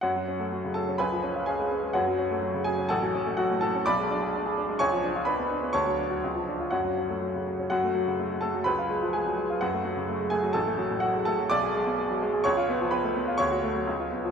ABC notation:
X:1
M:2/4
L:1/16
Q:1/4=126
K:F#m
V:1 name="Grand piano"
[Fcf]6 [Aa]2 | [Bgb]4 [G^eg]4 | [Fcf]6 [Gg]2 | [Afa]4 [Ff]2 [Aa]2 |
[dbd']8 | [cgc']4 [Bb]2 z2 | [cac']8 | [Fcf]6 z2 |
[Ff]6 [Aa]2 | [Bb]4 [Gg]4 | [Ff]6 [Gg]2 | [Aa]4 [Ff]2 [Aa]2 |
[dd']8 | [cc']4 [Bb]2 z2 | [cc']8 |]
V:2 name="Grand piano" clef=bass
F,, F, C A, F, C, F, C | C,, ^E, C ^E C G, C G, | F,, F, C A, F, C, F, C | A,,, F, C A, F, A,, F, C |
B,,, G, D G D G D G, | C,, ^E, D ^E D B, D B, | D,, F, D F C,, ^E, D ^E | F,, F, C A, F, C, F, C |
F,, A, F, C, A, G, A, F, | C,, ^E G, ^E, G, F, G, E | F,, A, F, C, A, G, A, F, | A,,, A, F, A,, A, G, A, F, |
B,,, G G, B,, G, F, G, G | C,, ^E B, ^E, B, A, B, E | D,, F A, F, C,, ^E B, ^E, |]